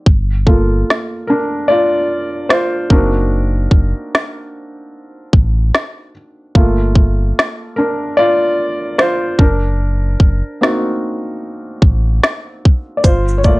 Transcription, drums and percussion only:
0.06 kick loud
0.47 kick medium
0.90 snare medium
2.50 snare loud
2.90 kick loud
3.71 kick medium
4.15 snare loud
5.33 kick medium
5.75 snare loud
6.55 kick loud
6.95 kick medium
7.39 snare loud
8.99 snare loud
9.39 kick loud
10.20 kick medium
10.63 snare loud
11.82 kick medium
12.24 snare loud
12.65 kick medium
13.04 kick loud
13.04 closed hi-hat medium
13.04 shaker medium
13.28 shaker soft
13.44 kick medium
13.44 shaker soft

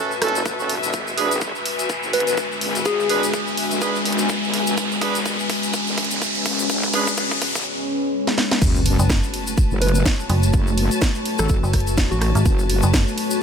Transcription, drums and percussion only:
0.11 shaker soft
0.22 cross-stick medium
0.22 open hi-hat loud
0.28 closed hi-hat medium
0.35 closed hi-hat medium
0.35 shaker medium
0.46 kick loud
0.46 closed hi-hat medium
0.46 shaker medium
0.59 shaker soft
0.69 open hi-hat loud
0.83 closed hi-hat soft
0.83 shaker medium
0.93 kick loud
0.93 closed hi-hat medium
0.93 shaker medium
1.07 shaker soft
1.18 open hi-hat loud
1.31 closed hi-hat soft
1.31 shaker medium
1.41 kick loud
1.41 closed hi-hat medium
1.41 shaker medium
1.55 shaker soft
1.66 open hi-hat loud
1.79 closed hi-hat soft
1.79 shaker medium
1.89 kick loud
1.89 closed hi-hat medium
1.89 shaker medium
2.03 shaker soft
2.13 open hi-hat loud
2.20 closed hi-hat medium
2.27 closed hi-hat soft
2.27 shaker medium
2.37 kick loud
2.37 closed hi-hat medium
2.37 shaker medium
2.52 shaker soft
2.61 open hi-hat loud
2.75 closed hi-hat soft
2.75 shaker medium
2.85 kick loud
2.85 closed hi-hat medium
2.85 shaker medium
3.00 shaker soft
3.09 open hi-hat loud
3.23 closed hi-hat medium
3.23 shaker medium
3.33 kick loud
3.33 closed hi-hat medium
3.33 shaker medium
3.47 shaker soft
3.57 open hi-hat loud
3.71 closed hi-hat soft
3.71 shaker medium
3.81 kick loud
3.81 closed hi-hat medium
3.81 shaker medium
3.95 shaker soft
4.05 open hi-hat loud
4.12 closed hi-hat medium
4.18 closed hi-hat medium
4.18 shaker medium
4.29 kick loud
4.29 closed hi-hat medium
4.29 shaker medium
4.44 shaker soft
4.54 open hi-hat loud
4.67 closed hi-hat medium
4.67 shaker medium
4.77 kick loud
4.77 closed hi-hat medium
4.77 shaker medium
4.92 shaker soft
5.01 kick loud
5.01 open hi-hat loud
5.15 closed hi-hat medium
5.15 shaker medium
5.26 kick loud
5.26 closed hi-hat medium
5.26 shaker medium
5.39 shaker soft
5.50 kick loud
5.50 open hi-hat loud
5.63 closed hi-hat medium
5.63 shaker medium
5.74 kick loud
5.74 closed hi-hat medium
5.74 shaker medium
5.87 shaker soft
5.98 kick loud
5.98 open hi-hat loud
6.05 closed hi-hat medium
6.11 closed hi-hat medium
6.11 shaker medium
6.22 kick loud
6.22 closed hi-hat medium
6.22 shaker medium
6.34 shaker soft
6.46 kick loud
6.46 open hi-hat loud
6.59 closed hi-hat medium
6.59 shaker medium
6.70 kick loud
6.70 closed hi-hat medium
6.70 shaker medium
6.83 kick medium
6.83 shaker soft
6.93 kick loud
6.93 open hi-hat loud
7.07 kick medium
7.07 closed hi-hat medium
7.07 shaker medium
7.17 kick loud
7.17 closed hi-hat medium
7.17 shaker medium
7.31 kick loud
7.31 shaker soft
7.42 kick loud
7.42 open hi-hat loud
7.55 kick loud
7.55 closed hi-hat medium
7.55 shaker medium
8.27 snare medium
8.38 snare medium
8.51 snare medium
8.62 kick loud
8.62 closed hi-hat medium
8.62 crash loud
8.62 shaker medium
8.76 shaker soft
8.86 open hi-hat loud
8.86 ride medium
8.99 closed hi-hat medium
8.99 shaker medium
9.10 kick loud
9.10 snare loud
9.10 closed hi-hat medium
9.10 shaker medium
9.23 shaker soft
9.34 open hi-hat medium
9.34 ride medium
9.47 closed hi-hat medium
9.47 shaker medium
9.57 kick loud
9.57 closed hi-hat medium
9.57 shaker medium
9.71 shaker soft
9.82 open hi-hat loud
9.82 ride medium
9.88 closed hi-hat medium
9.95 closed hi-hat medium
9.95 shaker medium
10.06 kick loud
10.06 snare loud
10.06 closed hi-hat medium
10.06 shaker medium
10.20 shaker soft
10.30 open hi-hat medium
10.30 ride medium
10.43 closed hi-hat medium
10.43 shaker medium
10.53 kick loud
10.53 closed hi-hat medium
10.53 shaker medium
10.67 shaker soft
10.78 open hi-hat loud
10.78 ride medium
10.91 closed hi-hat medium
10.91 shaker medium
11.02 kick loud
11.02 snare loud
11.02 closed hi-hat medium
11.02 shaker medium
11.15 shaker soft
11.25 open hi-hat loud
11.25 ride medium
11.38 cross-stick medium
11.38 closed hi-hat medium
11.38 shaker medium
11.49 kick loud
11.49 closed hi-hat medium
11.49 shaker medium
11.64 shaker soft
11.73 kick medium
11.73 cross-stick medium
11.73 open hi-hat loud
11.73 ride medium
11.80 closed hi-hat medium
11.87 closed hi-hat medium
11.87 shaker medium
11.97 kick loud
11.97 snare loud
11.97 closed hi-hat medium
11.97 shaker medium
12.12 shaker soft
12.22 cross-stick medium
12.22 open hi-hat medium
12.22 ride medium
12.35 closed hi-hat medium
12.35 shaker medium
12.45 kick loud
12.45 closed hi-hat medium
12.45 shaker medium
12.59 shaker soft
12.70 open hi-hat loud
12.70 ride medium
12.82 closed hi-hat medium
12.82 shaker medium
12.94 kick loud
12.94 snare loud
12.94 closed hi-hat medium
12.94 shaker medium
13.08 shaker soft
13.18 open hi-hat loud
13.18 ride medium
13.31 closed hi-hat soft
13.31 shaker medium

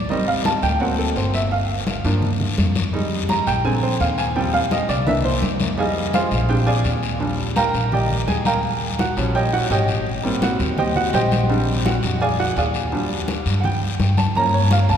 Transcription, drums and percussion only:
0.09 high conga soft
0.09 long guiro medium
0.28 high conga soft
0.44 high conga loud
0.44 short guiro medium
0.62 high conga soft
0.62 short guiro medium
0.80 high conga soft
0.80 long guiro medium
0.99 high conga soft
1.16 high conga soft
1.16 short guiro medium
1.34 high conga soft
1.34 short guiro medium
1.51 high conga soft
1.51 long guiro medium
1.69 high conga soft
1.87 high conga medium
1.87 short guiro medium
2.05 high conga soft
2.05 short guiro medium
2.22 high conga soft
2.22 low conga medium
2.22 long guiro medium
2.40 high conga soft
2.40 low conga medium
2.58 high conga medium
2.58 short guiro medium
2.76 high conga medium
2.76 short guiro medium
2.93 high conga soft
2.93 long guiro medium
3.11 high conga soft
3.29 high conga medium
3.29 short guiro medium
3.46 high conga soft
3.46 short guiro medium
3.64 high conga soft
3.64 long guiro medium
3.82 high conga soft
4.00 high conga soft
4.00 short guiro medium
4.18 high conga soft
4.18 short guiro medium
4.36 high conga soft
4.36 long guiro medium
4.54 high conga soft
4.71 high conga medium
4.71 short guiro medium
4.89 high conga soft
4.89 short guiro medium
5.07 high conga soft
5.07 low conga medium
5.07 long guiro medium
5.25 high conga soft
5.42 high conga medium
5.42 short guiro medium
5.60 high conga medium
5.60 short guiro medium
5.78 high conga soft
5.78 long guiro medium
5.96 high conga soft
6.13 high conga medium
6.13 short guiro medium
6.31 high conga soft
6.31 short guiro medium
6.49 high conga soft
6.49 long guiro medium
6.67 high conga soft
6.84 high conga soft
6.84 short guiro medium
7.03 high conga soft
7.03 short guiro medium
7.20 high conga soft
7.20 long guiro medium
7.39 high conga soft
7.56 high conga medium
7.56 short guiro medium
7.74 high conga soft
7.74 short guiro medium
7.92 high conga soft
7.92 low conga medium
7.92 long guiro medium
8.10 high conga soft
8.10 low conga medium
8.28 high conga medium
8.28 short guiro medium
8.45 high conga medium
8.45 short guiro medium
8.63 high conga soft
8.63 long guiro medium
8.81 high conga soft
8.99 high conga medium
8.99 short guiro medium
9.17 high conga soft
9.17 short guiro medium
9.35 high conga soft
9.35 long guiro medium
9.53 high conga soft
9.71 high conga soft
9.71 short guiro medium
9.88 high conga soft
9.88 short guiro medium
10.06 high conga soft
10.06 long guiro medium
10.24 high conga soft
10.42 high conga medium
10.42 short guiro medium
10.59 high conga soft
10.59 short guiro medium
10.78 high conga soft
10.78 low conga medium
10.78 long guiro medium
10.96 high conga soft
10.96 low conga medium
11.13 high conga medium
11.13 short guiro medium
11.31 high conga medium
11.31 short guiro medium
11.50 high conga soft
11.50 long guiro medium
11.68 high conga soft
11.85 high conga medium
11.85 short guiro medium
12.03 high conga soft
12.03 short guiro medium
12.21 high conga soft
12.21 long guiro medium
12.39 high conga soft
12.56 high conga soft
12.56 short guiro medium
12.74 high conga soft
12.74 short guiro medium
12.92 high conga soft
12.92 long guiro medium
13.10 high conga soft
13.28 high conga medium
13.28 short guiro medium
13.46 high conga soft
13.46 short guiro medium
13.64 high conga soft
13.64 low conga medium
13.64 long guiro medium
13.82 high conga soft
14.00 high conga medium
14.00 short guiro medium
14.17 high conga medium
14.17 short guiro medium
14.35 high conga soft
14.35 long guiro medium
14.53 high conga soft
14.71 high conga medium
14.71 short guiro medium
14.89 high conga soft
14.89 short guiro medium

